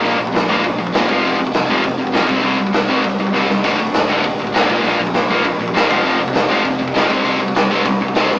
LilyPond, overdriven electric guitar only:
\new Staff \with { instrumentName = "Overdriven electric guitar" } { \clef bass \time 4/4 \key c \mixolydian \tempo 4 = 200 <bes, f bes>8 <bes, f>8 <bes, f>8 <bes, f bes>8 <bes, f>8 <bes, f>8 <bes, f bes>8 <f, c f>8 | <f, c f>8 <f, c>8 <f, c>8 <f, c f>8 <f, c>8 <f, c>8 <f, c f>8 <c g c'>8 | <c g c'>8 <c g>8 <c g>8 <c g c'>8 <c g>8 <c g>8 <c g c'>8 <c g>8 | <d, a, d>8 <d, a,>8 <d, a,>8 <d, a, d>8 <d, a,>8 <d, a,>8 <d, a, d>8 <bes, f bes>8 |
<bes, f bes>8 <bes, f>8 <bes, f>8 <bes, f bes>8 <bes, f>8 <bes, f>8 <bes, f bes>8 <f, c f>8 | <f, c f>8 <f, c>8 <f, c>8 <f, c f>8 <f, c>8 <f, c>8 <f, c f>8 <c g c'>8 | <c g c'>8 <c g>8 <c g>8 <c g c'>8 <c g>8 <c g>8 <c g c'>8 <c g>8 | }